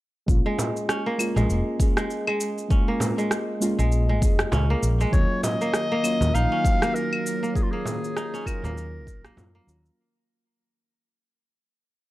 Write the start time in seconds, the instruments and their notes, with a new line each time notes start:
0.26 fretless electric bass A#1, synth keys G#3 A#3 C#4, kick, shaker
0.30 synth keys F4
0.46 kora G#3
0.59 frame drum, shaker
0.77 shaker
0.89 kora C#4, cross-stick, shaker
1.06 kora A#3
1.18 synth keys G#3 A#3 C#4 F4, claves, shaker
1.36 fretless electric bass A#1, kora G#3, frame drum, shaker
1.49 fretless electric bass F1, shaker
1.78 synth keys G#3 A#3 C#4, kick, shaker
1.82 synth keys G#4
1.97 kora G#3, cross-stick, shaker
2.10 shaker
2.27 kora G#3, claves
2.40 shaker
2.58 shaker
2.68 synth keys G#3 A#3 C#4 F4, kora C#4, kick, shaker
2.88 kora A#3
3.00 frame drum, shaker
3.18 kora G#3, shaker
3.31 cross-stick, shaker
3.60 synth keys G#3 A#3 C#4 F4, shaker
3.79 fretless electric bass A#1, kora G#3, shaker
3.92 shaker
4.09 kora G#3
4.20 fretless electric bass F1, synth keys G#3 A#3 C#4, kick, shaker
4.24 synth keys G#4
4.39 cross-stick, shaker
4.52 fretless electric bass C#2, kora C#4, frame drum, shaker
4.70 kora A#3
4.83 fretless electric bass A#1, shaker
5.01 kora G#3, shaker
5.11 fretless electric bass D#2, ambient pad D#3, synth keys F#3 A#3 C#4, clarinet C#5, kick, shaker
5.15 synth keys F4
5.43 clarinet D#5, frame drum, shaker
5.61 kora A#3, shaker
5.74 ambient pad A#3, cross-stick, shaker
5.92 kora A#3
6.03 synth keys F#3 A#3 C#4 F4, claves, shaker
6.21 fretless electric bass D#2, frame drum, shaker
6.34 fretless electric bass A#1, ambient pad F#3, kora D#4, clarinet F5, shaker
6.52 kora C#4
6.63 synth keys F#3 A#3 C#4, kick, shaker
6.67 synth keys F#4
6.82 kora A#3, ambient pad C#5, cross-stick, shaker
6.95 clarinet A#4, shaker
7.13 claves
7.26 shaker
7.43 kora A#3, shaker
7.54 synth keys F#3 A#3 C#4, clarinet G#4, kick, shaker
7.58 synth keys F4
7.62 clarinet F4
7.71 kora A#3, clarinet G#4
7.85 frame drum, shaker
8.04 shaker
8.16 kora D#4, cross-stick, shaker
8.34 kora C#4, shaker
8.46 synth keys F#3 A#3 C#4 F4, clarinet A#4, kick, claves, shaker
8.63 fretless electric bass D#2, kora A#3, frame drum, shaker
8.78 shaker
9.07 fretless electric bass A#1, kick, shaker
9.25 kora A#3, cross-stick, shaker
9.36 fretless electric bass F#2, synth keys F#3 A#3 C#4 F4, frame drum, shaker
9.55 kora A#3
9.67 fretless electric bass D#2, synth keys F#3 A#3 C#4 F4, shaker
9.86 shaker